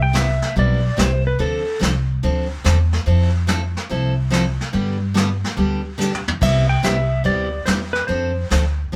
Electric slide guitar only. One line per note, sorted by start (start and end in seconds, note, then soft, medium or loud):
0.02 0.16 G5 loud
0.17 0.55 E5 medium
0.59 1.01 D5 medium
1.02 1.26 C5 medium
1.27 1.41 B4 medium
1.40 1.79 A4 medium
6.43 6.68 E5 medium
6.69 6.84 G5 loud
6.85 7.25 E5 loud
7.26 7.65 D5 medium
7.66 7.73 C5 medium
7.93 8.07 B4 medium
8.07 8.47 C5 medium